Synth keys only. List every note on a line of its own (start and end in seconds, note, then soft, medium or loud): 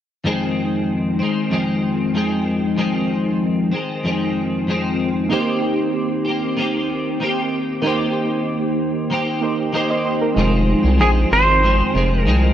5.29 7.79 A#3 medium
5.29 7.80 D#4 medium
5.29 7.80 G4 medium
5.34 7.81 C5 medium
7.82 9.38 A#3 medium
7.82 9.38 D#4 medium
7.82 9.39 G4 medium
7.87 9.40 C5 medium
9.41 10.36 A#3 soft
9.41 10.35 D#4 soft
9.41 9.74 G4 soft
9.41 9.74 C5 soft
9.74 9.89 D#5 soft
9.74 9.89 G5 soft
9.90 10.04 C5 medium
9.90 10.05 D#5 medium
10.05 10.20 C5 medium
10.21 10.51 G4 soft
10.21 10.51 A#4 medium
10.35 12.54 G#3 medium
10.35 12.54 D#4 medium
10.35 12.54 F4 medium
10.40 12.54 C5 medium